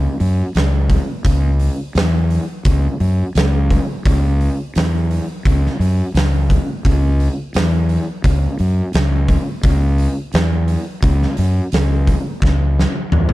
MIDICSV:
0, 0, Header, 1, 3, 480
1, 0, Start_track
1, 0, Key_signature, 4, "minor"
1, 0, Tempo, 698487
1, 1821, Time_signature, 4, 2, 24, 8
1, 9160, End_track
2, 0, Start_track
2, 0, Title_t, "Fingered electric bass"
2, 0, Program_c, 0, 33
2, 138, Note_on_c, 0, 42, 88
2, 283, Note_off_c, 0, 42, 0
2, 379, Note_on_c, 0, 37, 85
2, 670, Note_off_c, 0, 37, 0
2, 859, Note_on_c, 0, 37, 86
2, 1151, Note_off_c, 0, 37, 0
2, 1339, Note_on_c, 0, 40, 88
2, 1631, Note_off_c, 0, 40, 0
2, 1823, Note_on_c, 0, 37, 92
2, 1968, Note_off_c, 0, 37, 0
2, 2062, Note_on_c, 0, 42, 87
2, 2208, Note_off_c, 0, 42, 0
2, 2302, Note_on_c, 0, 37, 91
2, 2593, Note_off_c, 0, 37, 0
2, 2786, Note_on_c, 0, 37, 88
2, 3076, Note_off_c, 0, 37, 0
2, 3270, Note_on_c, 0, 40, 83
2, 3559, Note_off_c, 0, 40, 0
2, 3748, Note_on_c, 0, 37, 90
2, 3892, Note_off_c, 0, 37, 0
2, 3980, Note_on_c, 0, 42, 93
2, 4127, Note_off_c, 0, 42, 0
2, 4221, Note_on_c, 0, 37, 87
2, 4512, Note_off_c, 0, 37, 0
2, 4709, Note_on_c, 0, 37, 92
2, 4998, Note_off_c, 0, 37, 0
2, 5188, Note_on_c, 0, 40, 82
2, 5477, Note_off_c, 0, 40, 0
2, 5665, Note_on_c, 0, 37, 96
2, 5810, Note_off_c, 0, 37, 0
2, 5906, Note_on_c, 0, 42, 90
2, 6050, Note_off_c, 0, 42, 0
2, 6145, Note_on_c, 0, 37, 93
2, 6434, Note_off_c, 0, 37, 0
2, 6622, Note_on_c, 0, 37, 84
2, 6912, Note_off_c, 0, 37, 0
2, 7103, Note_on_c, 0, 40, 86
2, 7392, Note_off_c, 0, 40, 0
2, 7579, Note_on_c, 0, 37, 91
2, 7724, Note_off_c, 0, 37, 0
2, 7821, Note_on_c, 0, 42, 89
2, 7966, Note_off_c, 0, 42, 0
2, 8056, Note_on_c, 0, 37, 87
2, 8347, Note_off_c, 0, 37, 0
2, 8536, Note_on_c, 0, 37, 90
2, 8826, Note_off_c, 0, 37, 0
2, 9014, Note_on_c, 0, 40, 88
2, 9160, Note_off_c, 0, 40, 0
2, 9160, End_track
3, 0, Start_track
3, 0, Title_t, "Drums"
3, 138, Note_on_c, 9, 46, 59
3, 207, Note_off_c, 9, 46, 0
3, 376, Note_on_c, 9, 46, 76
3, 392, Note_on_c, 9, 38, 110
3, 444, Note_off_c, 9, 46, 0
3, 461, Note_off_c, 9, 38, 0
3, 614, Note_on_c, 9, 46, 57
3, 616, Note_on_c, 9, 36, 89
3, 683, Note_off_c, 9, 46, 0
3, 685, Note_off_c, 9, 36, 0
3, 855, Note_on_c, 9, 46, 81
3, 857, Note_on_c, 9, 36, 113
3, 924, Note_off_c, 9, 46, 0
3, 925, Note_off_c, 9, 36, 0
3, 1096, Note_on_c, 9, 46, 54
3, 1164, Note_off_c, 9, 46, 0
3, 1342, Note_on_c, 9, 46, 74
3, 1358, Note_on_c, 9, 38, 111
3, 1410, Note_off_c, 9, 46, 0
3, 1427, Note_off_c, 9, 38, 0
3, 1583, Note_on_c, 9, 46, 53
3, 1651, Note_off_c, 9, 46, 0
3, 1820, Note_on_c, 9, 46, 75
3, 1823, Note_on_c, 9, 36, 114
3, 1888, Note_off_c, 9, 46, 0
3, 1891, Note_off_c, 9, 36, 0
3, 2063, Note_on_c, 9, 46, 54
3, 2132, Note_off_c, 9, 46, 0
3, 2303, Note_on_c, 9, 46, 75
3, 2320, Note_on_c, 9, 38, 113
3, 2372, Note_off_c, 9, 46, 0
3, 2389, Note_off_c, 9, 38, 0
3, 2546, Note_on_c, 9, 36, 87
3, 2549, Note_on_c, 9, 46, 56
3, 2615, Note_off_c, 9, 36, 0
3, 2618, Note_off_c, 9, 46, 0
3, 2787, Note_on_c, 9, 36, 114
3, 2790, Note_on_c, 9, 46, 79
3, 2855, Note_off_c, 9, 36, 0
3, 2859, Note_off_c, 9, 46, 0
3, 3028, Note_on_c, 9, 46, 53
3, 3096, Note_off_c, 9, 46, 0
3, 3266, Note_on_c, 9, 46, 86
3, 3283, Note_on_c, 9, 38, 121
3, 3335, Note_off_c, 9, 46, 0
3, 3352, Note_off_c, 9, 38, 0
3, 3510, Note_on_c, 9, 46, 55
3, 3578, Note_off_c, 9, 46, 0
3, 3748, Note_on_c, 9, 36, 104
3, 3751, Note_on_c, 9, 46, 72
3, 3817, Note_off_c, 9, 36, 0
3, 3820, Note_off_c, 9, 46, 0
3, 3889, Note_on_c, 9, 38, 32
3, 3958, Note_off_c, 9, 38, 0
3, 3992, Note_on_c, 9, 46, 62
3, 4060, Note_off_c, 9, 46, 0
3, 4226, Note_on_c, 9, 46, 77
3, 4242, Note_on_c, 9, 38, 113
3, 4295, Note_off_c, 9, 46, 0
3, 4311, Note_off_c, 9, 38, 0
3, 4465, Note_on_c, 9, 46, 59
3, 4467, Note_on_c, 9, 36, 89
3, 4534, Note_off_c, 9, 46, 0
3, 4535, Note_off_c, 9, 36, 0
3, 4707, Note_on_c, 9, 36, 112
3, 4709, Note_on_c, 9, 46, 77
3, 4775, Note_off_c, 9, 36, 0
3, 4778, Note_off_c, 9, 46, 0
3, 4947, Note_on_c, 9, 46, 55
3, 5016, Note_off_c, 9, 46, 0
3, 5182, Note_on_c, 9, 46, 77
3, 5199, Note_on_c, 9, 38, 115
3, 5251, Note_off_c, 9, 46, 0
3, 5267, Note_off_c, 9, 38, 0
3, 5423, Note_on_c, 9, 46, 54
3, 5492, Note_off_c, 9, 46, 0
3, 5662, Note_on_c, 9, 46, 71
3, 5664, Note_on_c, 9, 36, 113
3, 5731, Note_off_c, 9, 46, 0
3, 5733, Note_off_c, 9, 36, 0
3, 5901, Note_on_c, 9, 46, 53
3, 5970, Note_off_c, 9, 46, 0
3, 6137, Note_on_c, 9, 46, 73
3, 6153, Note_on_c, 9, 38, 105
3, 6206, Note_off_c, 9, 46, 0
3, 6222, Note_off_c, 9, 38, 0
3, 6378, Note_on_c, 9, 46, 58
3, 6381, Note_on_c, 9, 36, 81
3, 6446, Note_off_c, 9, 46, 0
3, 6449, Note_off_c, 9, 36, 0
3, 6620, Note_on_c, 9, 46, 75
3, 6621, Note_on_c, 9, 36, 117
3, 6689, Note_off_c, 9, 46, 0
3, 6690, Note_off_c, 9, 36, 0
3, 6859, Note_on_c, 9, 46, 57
3, 6928, Note_off_c, 9, 46, 0
3, 7096, Note_on_c, 9, 46, 75
3, 7113, Note_on_c, 9, 38, 110
3, 7165, Note_off_c, 9, 46, 0
3, 7181, Note_off_c, 9, 38, 0
3, 7338, Note_on_c, 9, 46, 57
3, 7407, Note_off_c, 9, 46, 0
3, 7576, Note_on_c, 9, 46, 79
3, 7577, Note_on_c, 9, 36, 112
3, 7644, Note_off_c, 9, 46, 0
3, 7646, Note_off_c, 9, 36, 0
3, 7713, Note_on_c, 9, 38, 34
3, 7782, Note_off_c, 9, 38, 0
3, 7813, Note_on_c, 9, 46, 64
3, 7881, Note_off_c, 9, 46, 0
3, 8053, Note_on_c, 9, 46, 80
3, 8070, Note_on_c, 9, 38, 110
3, 8122, Note_off_c, 9, 46, 0
3, 8139, Note_off_c, 9, 38, 0
3, 8297, Note_on_c, 9, 36, 85
3, 8297, Note_on_c, 9, 46, 65
3, 8366, Note_off_c, 9, 36, 0
3, 8366, Note_off_c, 9, 46, 0
3, 8535, Note_on_c, 9, 36, 112
3, 8553, Note_on_c, 9, 38, 64
3, 8604, Note_off_c, 9, 36, 0
3, 8621, Note_off_c, 9, 38, 0
3, 8792, Note_on_c, 9, 38, 70
3, 8861, Note_off_c, 9, 38, 0
3, 9016, Note_on_c, 9, 45, 87
3, 9085, Note_off_c, 9, 45, 0
3, 9132, Note_on_c, 9, 45, 77
3, 9160, Note_off_c, 9, 45, 0
3, 9160, End_track
0, 0, End_of_file